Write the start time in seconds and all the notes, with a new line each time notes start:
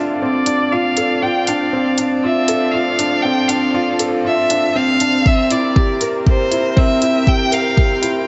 Already playing: D3 C4 D4 F4 A4 D5
0.22 C4 D5
0.46 D4, closed hi-hat
0.72 F4 F5
0.97 A4, closed hi-hat
1.22 F3 F4 G5
1.47 D4 F5, closed hi-hat
1.73 C4
1.98 D4, closed hi-hat
2.23 F4 E5
2.34 A4
2.48 A4, closed hi-hat
2.72 F4 F5
2.99 D4, closed hi-hat
3.22 C4 G5
3.47 D4 F5, closed hi-hat
3.74 F4
3.99 A4, closed hi-hat
4.25 F4 E5
4.50 D4, closed hi-hat
4.76 C4 F5
5.00 D4, closed hi-hat
5.25 C3 C4 E5, kick
5.41 A#4
5.51 E4 D5, closed hi-hat
5.76 G4, kick
6.01 A#4, closed hi-hat
6.26 G4 C5, kick
6.51 E4, closed hi-hat
6.76 C4 E5, kick
6.91 G5
7.01 E4, closed hi-hat
7.26 G4 G5, kick
7.51 A#4 F5, closed hi-hat
7.76 G4, kick
8.02 E4, closed hi-hat